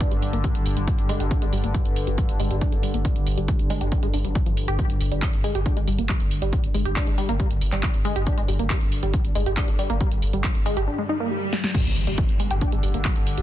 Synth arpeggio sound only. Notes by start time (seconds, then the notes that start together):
0.01 D4
0.11 G#3
0.22 G3
0.33 A#3
0.44 G3
0.77 G3
1.09 G#3
1.20 G4
1.31 D4
1.42 G#3
1.53 G3
1.64 A#3
1.74 G3
2.07 G3
2.40 G#3
2.51 G4
2.61 D4
2.72 G#3
2.83 G3
2.94 A#3
3.05 G3
3.37 G3
3.70 G#3
3.81 G4
3.92 D4
4.03 G#3
4.14 D4
4.25 G3
4.35 G3
4.46 F3
4.68 G4
4.79 G3
5.12 G3
5.44 G#3
5.55 G4
5.66 D4
5.77 G#3
5.88 G3
5.98 A#3
6.09 G3
6.42 G3
6.74 G#3
6.85 G4
6.96 D4
7.07 G#3
7.18 G3
7.29 A#3
7.40 G3
7.72 G3
8.05 G#3
8.16 G4
8.27 D4
8.38 G#3
8.48 G3
8.59 A#3
8.70 G3
9.03 G3
9.35 G#3
9.46 G4
9.57 D4
9.68 G#3
9.79 G3
9.90 A#3
10.01 G3
10.33 G3
10.66 G#3
10.77 G4
10.87 D4
10.98 G#3
11.09 D#4
11.20 A#3
11.31 G3
11.53 G3
11.64 G3
11.74 G3
12.07 G3
12.40 G#3
12.51 G4
12.62 D4
12.73 G#3
12.83 G3
12.94 A#3
13.05 G3
13.38 G3